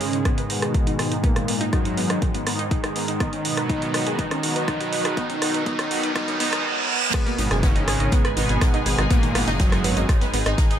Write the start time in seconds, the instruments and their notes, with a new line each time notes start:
Already playing: analog synth pad G#2 D#3 G#3, ambient pad G#2 G#3 D#4, synth drone G#2 D#3, supersaw synth C#3, analog polysynth C#4, riser
0.01 synth pluck G#4, open hi-hat
0.13 synth pluck D#4, closed hi-hat
0.25 synth pluck B3, kick, cross-stick, closed hi-hat
0.38 synth pluck B4, closed hi-hat
0.50 supersaw synth B2, analog polysynth B3, synth pluck D#4, open hi-hat
0.62 synth pluck G#4, cross-stick, closed hi-hat
0.74 synth pluck D#4, kick, closed hi-hat
0.87 synth pluck D#4, closed hi-hat
0.99 synth pluck G#4, cross-stick, open hi-hat
1.12 synth pluck D#4, closed hi-hat
1.24 supersaw synth A#2, analog polysynth A#3, synth pluck B3, kick, closed hi-hat
1.36 synth pluck D#3, cross-stick, closed hi-hat
1.48 analog synth pad G#2 D#3 G#3, synth pluck B3, open hi-hat
1.61 analog synth pad G#2 D#3 G#3, synth pluck D#4, closed hi-hat
1.73 supersaw synth F#2, analog polysynth F#3, synth pluck D#4, kick, cross-stick, closed hi-hat
1.85 synth pluck D#4, closed hi-hat
1.97 synth pluck B3, open hi-hat
2.10 synth pluck D#4, cross-stick, closed hi-hat
2.22 synth pluck D#3, kick, closed hi-hat
2.34 synth pluck B3, closed hi-hat
2.47 synth pluck B3, cross-stick, open hi-hat
2.59 synth pluck D#4, closed hi-hat
2.71 synth pluck D#4, kick, closed hi-hat
2.84 synth pluck D#4, cross-stick, closed hi-hat
2.96 synth pluck B3, open hi-hat
3.08 synth pluck D#4, closed hi-hat
3.20 ambient pad B2 F#4, supersaw synth D#3, synth pluck B3, analog polysynth D#4, kick, cross-stick, closed hi-hat
3.33 synth pluck C#4, closed hi-hat
3.45 analog synth pad B2 F#3 B3, synth pluck F#4, open hi-hat
3.57 analog synth pad B2 F#3 B3, synth pluck B4, cross-stick, closed hi-hat
3.69 supersaw synth D#3, synth pluck D#4, analog polysynth D#4, kick, closed hi-hat
3.82 synth pluck F#4, closed hi-hat
3.94 synth pluck B4, cross-stick, open hi-hat
4.07 synth pluck G#4, closed hi-hat
4.19 supersaw synth D#3, synth pluck B3, analog polysynth D#4, kick, closed hi-hat
4.31 synth pluck C#4, cross-stick, closed hi-hat
4.43 analog synth pad B2 F#3 B3, synth pluck F#4, open hi-hat
4.56 analog synth pad B2 F#3 B3, synth pluck B4, closed hi-hat
4.68 supersaw synth D#3, synth pluck D#4, analog polysynth D#4, kick, cross-stick, closed hi-hat
4.80 synth pluck F#4, closed hi-hat
4.93 synth pluck B4, open hi-hat
5.05 synth pluck G#4, cross-stick, closed hi-hat
5.17 supersaw synth D#3, synth pluck B3, analog polysynth D#4, kick, closed hi-hat
5.30 synth pluck C#4, closed hi-hat
5.42 analog synth pad B2 F#3 B3, synth pluck F#4, cross-stick, open hi-hat
5.54 analog synth pad B2 F#3 B3, synth pluck B4, closed hi-hat
5.66 supersaw synth D#3, synth pluck B3, analog polysynth D#4, kick, closed hi-hat
5.79 synth pluck C#4, cross-stick, closed hi-hat
5.91 analog synth pad B2 F#3 B3, synth pluck F#4, open hi-hat
6.03 analog synth pad B2 F#3 B3, synth pluck B4, closed hi-hat
6.15 analog synth pad B2 F#3 B3, supersaw synth D#3, synth pluck B3, analog polysynth D#4, kick, cross-stick, closed hi-hat, reverse cymbal
6.28 analog synth pad B2 F#3 B3, synth pluck C#4, closed hi-hat
6.40 analog synth pad B2 F#3 B3, supersaw synth D#3, synth pluck B3, analog polysynth D#4, open hi-hat
6.53 analog synth pad B2 F#3 B3, synth pluck C#4, cross-stick, closed hi-hat
6.65 analog synth pad B2 F#3 B3
6.77 analog synth pad B2 F#3 B3
6.89 analog synth pad B2 F#3 B3
7.02 analog synth pad B2 F#3 B3
7.13 supersaw synth B2, synth pluck G#3 G#4, analog polysynth B3, ambient pad D#4 G#4 G#5, kick, cross-stick, closed hi-hat, crash
7.26 synth pluck A#3 A#4, snare, closed hi-hat
7.38 detuned saw bass G#1, analog synth pad G#2 D#3 G#3, synth pluck D#4 D#5, closed hi-hat, open hi-hat
7.51 detuned saw bass F#1, analog synth pad G#2 D#3 G#3, synth pluck G#4 G#5, cross-stick, snare, closed hi-hat
7.63 supersaw synth C#3, synth pluck B3 B4, analog polysynth C#4, kick, snare, closed hi-hat
7.76 synth pluck D#4 D#5, closed hi-hat
7.88 detuned saw bass G#1, synth pluck G#4 G#5, cross-stick, closed hi-hat, open hi-hat
8.00 detuned saw bass G#1, synth pluck D#4 D#5, closed hi-hat
8.12 synth pluck B3 B4, kick, closed hi-hat
8.25 synth pluck B4 B5, cross-stick, closed hi-hat
8.37 detuned saw bass G#1, supersaw synth B2, analog polysynth B3, synth pluck D#4 D#5, closed hi-hat, open hi-hat
8.49 detuned saw bass G#1, synth pluck G#4 G#5, closed hi-hat
8.61 synth pluck D#4 D#5, kick, cross-stick, snare, closed hi-hat
8.74 synth pluck D#4 D#5, closed hi-hat
8.86 detuned saw bass G#1, synth pluck G#4 G#5, closed hi-hat, open hi-hat
8.98 detuned saw bass G#1, synth pluck D#4 D#5, cross-stick, closed hi-hat
9.10 supersaw synth A#2, analog polysynth A#3, synth pluck B3 B4, kick, closed hi-hat
9.23 synth pluck D#3 D#4, closed hi-hat
9.35 detuned saw bass G#1, analog synth pad G#2 D#3 G#3, synth pluck B3 B4, cross-stick, open hi-hat
9.48 detuned saw bass F#1, analog synth pad G#2 D#3 G#3, synth pluck D#4 D#5, snare, closed hi-hat
9.59 supersaw synth F#2, analog polysynth F#3, synth pluck D#4 D#5, kick, snare, closed hi-hat
9.72 synth pluck D#4 D#5, cross-stick, snare, closed hi-hat
9.84 detuned saw bass G#1, synth pluck B3 B4, closed hi-hat, open hi-hat
9.96 detuned saw bass G#1, synth pluck D#4 D#5, closed hi-hat
10.09 synth pluck D#3 D#4, kick, cross-stick, closed hi-hat
10.21 synth pluck B3 B4, snare, closed hi-hat
10.33 detuned saw bass G#1, synth pluck B3 B4, closed hi-hat, open hi-hat
10.46 detuned saw bass G#1, synth pluck D#4 D#5, cross-stick, closed hi-hat
10.58 synth pluck D#4 D#5, kick, snare, closed hi-hat
10.70 synth pluck D#4 D#5, closed hi-hat